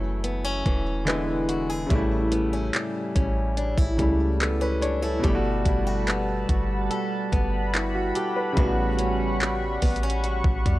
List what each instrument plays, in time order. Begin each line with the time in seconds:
Already playing: 808-style bass F#1, steel-string acoustic guitar F#2 E3 A3 C#4, grand piano C#3 F#3 A3 E4
0.24 steel-string acoustic guitar B3, closed hi-hat
0.44 steel-string acoustic guitar C#4
0.66 808-style bass E1, steel-string acoustic guitar E3, kick, closed hi-hat
1.05 grand piano D3 G#3 B3, steel-string acoustic guitar E3, clap, closed hi-hat
1.10 grand piano E4
1.49 steel-string acoustic guitar F#4, closed hi-hat
1.70 steel-string acoustic guitar G#4
1.86 steel-string acoustic guitar A2, grand piano C#3 G3
1.90 808-style bass A1, grand piano A3, steel-string acoustic guitar E4, kick, closed hi-hat
1.95 grand piano E4
2.32 steel-string acoustic guitar B3, closed hi-hat
2.53 steel-string acoustic guitar C#4
2.74 steel-string acoustic guitar G3, clap, closed hi-hat
3.15 808-style bass A1, steel-string acoustic guitar C#4, kick, closed hi-hat
3.57 steel-string acoustic guitar D4, closed hi-hat
3.78 808-style bass A1, steel-string acoustic guitar E4, kick
3.97 808-style bass C#2, grand piano C#3 G3 A3, steel-string acoustic guitar G3, kick, closed hi-hat
4.01 grand piano E4
4.40 steel-string acoustic guitar B3, grand piano A4, clap, closed hi-hat
4.61 steel-string acoustic guitar C#4, grand piano B4
4.81 steel-string acoustic guitar D4, grand piano C#5, closed hi-hat
5.02 steel-string acoustic guitar E4, grand piano A4
5.19 grand piano B2 G3
5.23 808-style bass G1, steel-string acoustic guitar G3 A4, analog synth pad G3 F#5 A5 B5, grand piano A3, kick, closed hi-hat
5.29 grand piano E4
5.35 grand piano F#4
5.65 808-style bass G1, steel-string acoustic guitar E4, kick, closed hi-hat
5.87 steel-string acoustic guitar F#4
6.07 steel-string acoustic guitar B3, clap, closed hi-hat
6.49 808-style bass G1, steel-string acoustic guitar F#4, kick, closed hi-hat
6.90 steel-string acoustic guitar A4, closed hi-hat
7.32 808-style bass G1, steel-string acoustic guitar B3, kick, closed hi-hat
7.74 grand piano E4, steel-string acoustic guitar F#4, clap, closed hi-hat
7.95 grand piano F#4
8.15 grand piano G4, steel-string acoustic guitar A4, closed hi-hat
8.36 grand piano B4
8.52 grand piano C#3 G3
8.57 808-style bass A1, steel-string acoustic guitar A2 F#4, grand piano B3, analog synth pad C#6, kick, closed hi-hat
8.62 grand piano F#4
8.99 steel-string acoustic guitar C#4, closed hi-hat
9.41 steel-string acoustic guitar G3, clap, closed hi-hat
9.82 808-style bass A1, steel-string acoustic guitar B3, kick, closed hi-hat, open hi-hat
9.96 closed hi-hat
10.03 steel-string acoustic guitar C#4
10.10 closed hi-hat
10.24 steel-string acoustic guitar F#4, closed hi-hat
10.44 808-style bass A1, kick
10.66 808-style bass E2, steel-string acoustic guitar G3, kick, closed hi-hat